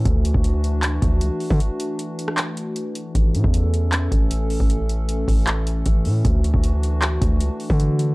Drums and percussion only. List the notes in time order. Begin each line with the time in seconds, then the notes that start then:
0.05 kick, closed hi-hat
0.25 closed hi-hat
0.34 kick
0.44 closed hi-hat
0.64 closed hi-hat
0.83 clap, closed hi-hat
1.02 kick, closed hi-hat
1.21 closed hi-hat
1.40 open hi-hat
1.50 kick
1.60 closed hi-hat
1.80 closed hi-hat
1.99 closed hi-hat
2.19 closed hi-hat
2.28 cross-stick
2.38 clap, closed hi-hat
2.57 closed hi-hat
2.76 closed hi-hat
2.95 closed hi-hat
3.15 kick, closed hi-hat
3.35 closed hi-hat
3.44 kick
3.54 closed hi-hat
3.74 closed hi-hat
3.92 clap, closed hi-hat
4.12 kick, closed hi-hat
4.31 closed hi-hat
4.50 open hi-hat
4.60 kick
4.70 closed hi-hat
4.89 closed hi-hat
5.09 closed hi-hat
5.28 kick, open hi-hat
5.47 clap, closed hi-hat
5.67 closed hi-hat
5.86 kick, closed hi-hat
6.05 open hi-hat
6.25 kick, closed hi-hat
6.44 closed hi-hat
6.54 kick
6.64 closed hi-hat
6.83 closed hi-hat
7.02 clap, closed hi-hat
7.21 kick, closed hi-hat
7.41 closed hi-hat
7.60 open hi-hat
7.70 kick
7.80 closed hi-hat
7.99 closed hi-hat